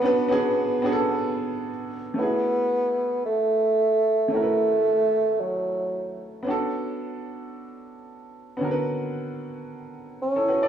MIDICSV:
0, 0, Header, 1, 3, 480
1, 0, Start_track
1, 0, Key_signature, 3, "minor"
1, 0, Tempo, 535714
1, 30, Time_signature, 4, 2, 24, 8
1, 9573, End_track
2, 0, Start_track
2, 0, Title_t, "Grand piano"
2, 0, Program_c, 0, 0
2, 0, Control_c, 0, 64, 127
2, 0, Note_on_c, 0, 59, 75
2, 0, Note_on_c, 0, 61, 70
2, 0, Note_on_c, 0, 62, 69
2, 0, Note_on_c, 0, 66, 69
2, 0, Note_on_c, 0, 68, 68
2, 0, Note_on_c, 0, 69, 88
2, 0, Note_on_c, 0, 71, 87
2, 14, Note_off_c, 0, 59, 0
2, 14, Note_on_c, 0, 59, 87
2, 23, Note_off_c, 0, 61, 0
2, 23, Note_on_c, 0, 61, 81
2, 32, Note_off_c, 0, 62, 0
2, 32, Note_on_c, 0, 62, 79
2, 41, Note_off_c, 0, 66, 0
2, 41, Note_on_c, 0, 66, 77
2, 50, Note_off_c, 0, 71, 0
2, 50, Note_on_c, 0, 71, 100
2, 219, Note_off_c, 0, 59, 0
2, 223, Note_off_c, 0, 61, 0
2, 228, Note_off_c, 0, 62, 0
2, 232, Note_off_c, 0, 66, 0
2, 236, Note_off_c, 0, 71, 0
2, 254, Note_on_c, 0, 59, 92
2, 263, Note_on_c, 0, 61, 86
2, 271, Note_on_c, 0, 62, 82
2, 280, Note_on_c, 0, 66, 85
2, 288, Note_off_c, 0, 68, 0
2, 288, Note_on_c, 0, 68, 99
2, 655, Note_off_c, 0, 59, 0
2, 660, Note_off_c, 0, 61, 0
2, 664, Note_off_c, 0, 62, 0
2, 668, Note_off_c, 0, 66, 0
2, 672, Note_off_c, 0, 68, 0
2, 735, Note_on_c, 0, 59, 87
2, 743, Note_on_c, 0, 61, 81
2, 752, Note_on_c, 0, 62, 85
2, 760, Note_on_c, 0, 66, 83
2, 769, Note_on_c, 0, 68, 82
2, 823, Note_off_c, 0, 68, 0
2, 827, Note_off_c, 0, 69, 0
2, 827, Note_on_c, 0, 69, 94
2, 1515, Note_off_c, 0, 59, 0
2, 1519, Note_off_c, 0, 61, 0
2, 1523, Note_off_c, 0, 62, 0
2, 1528, Note_off_c, 0, 66, 0
2, 1561, Note_off_c, 0, 69, 0
2, 1917, Note_on_c, 0, 57, 59
2, 1935, Note_on_c, 0, 61, 55
2, 1953, Note_on_c, 0, 64, 56
2, 1962, Control_c, 0, 64, 0
2, 1969, Note_on_c, 0, 66, 55
2, 1988, Note_on_c, 0, 68, 67
2, 2112, Control_c, 0, 64, 127
2, 3817, Note_off_c, 0, 57, 0
2, 3826, Note_off_c, 0, 61, 0
2, 3835, Note_off_c, 0, 64, 0
2, 3837, Note_on_c, 0, 57, 60
2, 3844, Note_off_c, 0, 66, 0
2, 3853, Note_off_c, 0, 68, 0
2, 3855, Note_on_c, 0, 61, 57
2, 3873, Note_on_c, 0, 64, 57
2, 3890, Note_on_c, 0, 66, 57
2, 3907, Note_on_c, 0, 70, 56
2, 3952, Note_off_c, 0, 70, 0
2, 3965, Note_on_c, 0, 71, 69
2, 5738, Note_off_c, 0, 57, 0
2, 5746, Note_off_c, 0, 61, 0
2, 5755, Note_off_c, 0, 64, 0
2, 5758, Note_on_c, 0, 59, 70
2, 5764, Note_off_c, 0, 66, 0
2, 5775, Note_on_c, 0, 61, 66
2, 5792, Note_on_c, 0, 62, 67
2, 5801, Note_off_c, 0, 71, 0
2, 5802, Control_c, 0, 64, 0
2, 5810, Note_on_c, 0, 66, 71
2, 5827, Note_on_c, 0, 69, 83
2, 5975, Control_c, 0, 64, 127
2, 7658, Note_off_c, 0, 59, 0
2, 7666, Note_off_c, 0, 61, 0
2, 7675, Note_off_c, 0, 62, 0
2, 7677, Note_on_c, 0, 59, 73
2, 7684, Note_off_c, 0, 66, 0
2, 7692, Note_off_c, 0, 69, 0
2, 7694, Note_on_c, 0, 61, 66
2, 7712, Note_on_c, 0, 50, 69
2, 7729, Note_on_c, 0, 66, 66
2, 7747, Note_on_c, 0, 70, 66
2, 7792, Note_off_c, 0, 70, 0
2, 7805, Note_on_c, 0, 71, 81
2, 9131, Note_off_c, 0, 66, 0
2, 9169, Note_off_c, 0, 71, 0
2, 9283, Note_on_c, 0, 69, 67
2, 9288, Note_on_c, 0, 64, 52
2, 9385, Note_off_c, 0, 69, 0
2, 9387, Note_off_c, 0, 64, 0
2, 9392, Note_on_c, 0, 71, 71
2, 9398, Note_on_c, 0, 66, 61
2, 9516, Note_off_c, 0, 71, 0
2, 9519, Note_off_c, 0, 66, 0
2, 9523, Note_on_c, 0, 74, 66
2, 9529, Note_on_c, 0, 69, 56
2, 9573, Note_off_c, 0, 50, 0
2, 9573, Note_off_c, 0, 59, 0
2, 9573, Note_off_c, 0, 61, 0
2, 9573, Note_off_c, 0, 69, 0
2, 9573, Note_off_c, 0, 74, 0
2, 9573, End_track
3, 0, Start_track
3, 0, Title_t, "Bassoon"
3, 0, Program_c, 1, 70
3, 0, Note_on_c, 1, 59, 107
3, 1436, Note_off_c, 1, 59, 0
3, 1956, Note_on_c, 1, 59, 112
3, 2877, Note_off_c, 1, 59, 0
3, 2917, Note_on_c, 1, 57, 96
3, 3837, Note_off_c, 1, 57, 0
3, 3878, Note_on_c, 1, 57, 99
3, 4839, Note_on_c, 1, 54, 79
3, 4852, Note_off_c, 1, 57, 0
3, 5554, Note_off_c, 1, 54, 0
3, 9159, Note_on_c, 1, 61, 107
3, 9573, Note_off_c, 1, 61, 0
3, 9573, End_track
0, 0, End_of_file